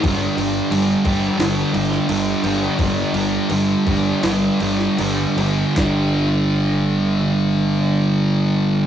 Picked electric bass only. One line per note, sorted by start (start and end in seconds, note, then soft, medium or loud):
0.03 0.26 G1 loud
0.36 0.59 G1 medium
0.71 0.93 G1 medium
1.05 1.28 G1 medium
1.39 1.62 G1 medium
1.74 1.97 G1 medium
2.09 2.32 G1 medium
2.44 2.66 G1 medium
2.79 3.02 G1 medium
3.13 3.37 G1 medium
3.49 3.73 G1 loud
3.87 4.11 G1 medium
4.23 4.48 G1 medium
4.61 4.86 G1 medium
4.99 5.24 G1 medium
5.36 5.62 G1 medium
5.77 8.87 G1 medium